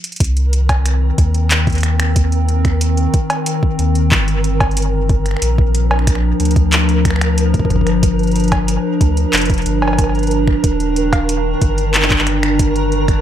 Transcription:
0.04 closed hi-hat
0.12 closed hi-hat
0.16 synth texture A#4, closed hi-hat
0.20 sub bass C2, ambient pad D#3, kick, closed hi-hat
0.24 closed hi-hat
0.37 closed hi-hat
0.48 ambient pad C4
0.53 closed hi-hat
0.69 finger snap, kick, closed hi-hat, cowbell
0.86 finger snap, closed hi-hat
1.18 sub bass D#2, kick, closed hi-hat
1.34 closed hi-hat
1.51 clap, closed hi-hat
1.67 kick, closed hi-hat
1.70 closed hi-hat
1.72 closed hi-hat
1.75 closed hi-hat
1.78 closed hi-hat
1.81 finger snap, closed hi-hat
1.83 closed hi-hat
2.00 finger snap, closed hi-hat
2.16 kick, closed hi-hat
2.32 closed hi-hat
2.49 closed hi-hat
2.65 finger snap, kick, closed hi-hat
2.81 closed hi-hat
2.97 closed hi-hat
3.14 kick, closed hi-hat
3.30 closed hi-hat, cowbell
3.46 closed hi-hat
3.63 kick
3.79 sub bass D#2, closed hi-hat
3.95 closed hi-hat
4.12 sub bass G1, kick, clap
4.28 closed hi-hat
4.44 closed hi-hat
4.60 kick, closed hi-hat, cowbell
4.71 closed hi-hat
4.77 closed hi-hat
4.82 closed hi-hat
5.09 kick, closed hi-hat
5.26 finger snap, closed hi-hat
5.31 finger snap
5.37 finger snap
5.42 sub bass A#1, ambient pad F3, closed hi-hat
5.58 kick
5.75 closed hi-hat
5.80 ambient pad D4
5.91 finger snap, cowbell
5.99 finger snap
6.07 finger snap, kick, closed hi-hat
6.15 finger snap
6.40 sub bass D2, closed hi-hat
6.45 closed hi-hat
6.51 closed hi-hat
6.56 kick, closed hi-hat
6.72 clap, closed hi-hat
6.89 closed hi-hat
7.05 finger snap, kick, closed hi-hat
7.11 finger snap
7.16 finger snap
7.21 finger snap, closed hi-hat
7.38 closed hi-hat
7.54 kick, closed hi-hat
7.59 kick
7.65 kick
7.70 sub bass G1, kick, closed hi-hat
7.76 kick
7.81 kick
7.87 finger snap, closed hi-hat
8.03 kick, closed hi-hat
8.19 closed hi-hat
8.23 closed hi-hat
8.27 closed hi-hat
8.31 closed hi-hat
8.36 closed hi-hat
8.40 closed hi-hat
8.44 closed hi-hat
8.48 closed hi-hat
8.52 finger snap, kick, closed hi-hat, cowbell
8.68 closed hi-hat
9.01 sub bass D2, kick, closed hi-hat
9.17 closed hi-hat
9.33 sub bass F1, clap, closed hi-hat
9.37 closed hi-hat
9.41 closed hi-hat
9.45 closed hi-hat
9.50 kick, closed hi-hat
9.54 closed hi-hat
9.58 closed hi-hat
9.62 closed hi-hat
9.66 sub bass G1, closed hi-hat
9.82 cowbell
9.88 cowbell
9.93 cowbell
9.99 kick, closed hi-hat, cowbell
10.04 cowbell
10.09 cowbell
10.15 closed hi-hat
10.19 closed hi-hat
10.23 closed hi-hat
10.27 closed hi-hat
10.31 closed hi-hat
10.48 finger snap, kick
10.64 sub bass D#1, ambient pad D#3, kick, closed hi-hat
10.80 closed hi-hat
10.96 closed hi-hat
11.13 finger snap, kick, closed hi-hat, cowbell
11.29 closed hi-hat
11.61 sub bass G1, kick, closed hi-hat
11.78 closed hi-hat
11.94 clap, closed hi-hat
12.02 clap
12.10 kick, clap, closed hi-hat
12.19 clap
12.27 finger snap, closed hi-hat
12.43 finger snap, closed hi-hat
12.59 kick, closed hi-hat
12.76 closed hi-hat
12.92 closed hi-hat
13.08 finger snap, kick, closed hi-hat

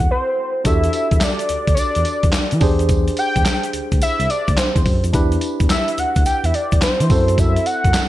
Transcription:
Already playing: tine electric piano C4 E4 F#4 A4
0.11 analog synth lead C5
0.64 analog synth bass E2, tine electric piano D4 F#4 G4 A4, analog synth lead E5, kick, closed hi-hat, tambourine, shaker
0.84 closed hi-hat, shaker
0.93 closed hi-hat, tambourine
1.11 analog synth bass E2, kick, closed hi-hat, shaker
1.21 analog synth lead D5, snare, clap, closed hi-hat, tambourine, shaker
1.39 closed hi-hat, shaker
1.49 analog synth bass D2, closed hi-hat, shaker
1.67 analog synth bass D2, kick, closed hi-hat, shaker
1.74 analog synth lead C#5, closed hi-hat, tambourine, shaker
1.79 analog synth lead D5
1.95 analog synth bass E2, closed hi-hat, shaker
2.05 closed hi-hat, tambourine
2.23 analog synth bass E2, kick, closed hi-hat, shaker
2.33 snare, clap, closed hi-hat, tambourine, shaker
2.51 analog synth bass E3, closed hi-hat, shaker
2.61 analog synth bass E2, tine electric piano D4 G4 G#4 C5, kick, open hi-hat, tambourine
2.79 closed hi-hat, shaker
2.89 kick, closed hi-hat, tambourine, shaker
3.08 closed hi-hat, shaker
3.17 analog synth lead G5, closed hi-hat, tambourine
3.36 analog synth bass E2, kick, closed hi-hat, shaker
3.45 snare, clap, closed hi-hat, tambourine, shaker
3.63 closed hi-hat, shaker
3.73 analog synth bass D2, closed hi-hat, shaker
3.92 analog synth bass D2, kick, closed hi-hat, shaker
4.01 analog synth lead E5, closed hi-hat, tambourine, shaker
4.19 analog synth bass C2, closed hi-hat, shaker
4.30 analog synth lead D5, closed hi-hat, tambourine
4.48 analog synth bass D2, kick, closed hi-hat, shaker
4.58 analog synth lead C5, snare, clap, closed hi-hat, tambourine, shaker
4.76 analog synth bass E2, kick, closed hi-hat, shaker
4.85 analog synth bass F#2, kick, open hi-hat, tambourine
5.03 analog synth bass F2, closed hi-hat, shaker
5.13 analog synth bass E2, tine electric piano D4 E4 G4 B4, kick, closed hi-hat, tambourine, shaker
5.32 closed hi-hat, shaker
5.41 closed hi-hat, tambourine
5.60 analog synth bass E2, kick, closed hi-hat, shaker
5.70 analog synth lead E5, snare, clap, closed hi-hat, tambourine, shaker
5.88 closed hi-hat, shaker
5.98 analog synth bass D2, analog synth lead F#5, closed hi-hat, shaker
6.16 analog synth bass D2, kick, closed hi-hat, shaker
6.26 analog synth lead G5, closed hi-hat, tambourine, shaker
6.44 analog synth bass E2, analog synth lead E5, closed hi-hat, shaker
6.54 analog synth lead D5, closed hi-hat, tambourine
6.72 analog synth bass E2, kick, closed hi-hat, shaker
6.82 analog synth lead C5, snare, clap, closed hi-hat, tambourine, shaker
7.00 analog synth bass E3, closed hi-hat, shaker
7.09 analog synth bass F#2, tine electric piano C4 E4 F#4 A4, kick, open hi-hat, tambourine
7.28 closed hi-hat, shaker
7.38 analog synth lead E5, kick, closed hi-hat, tambourine, shaker
7.56 closed hi-hat, shaker
7.66 analog synth lead F#5, closed hi-hat, tambourine
7.84 analog synth bass F#2, kick, closed hi-hat, shaker
7.94 snare, clap, closed hi-hat, tambourine, shaker

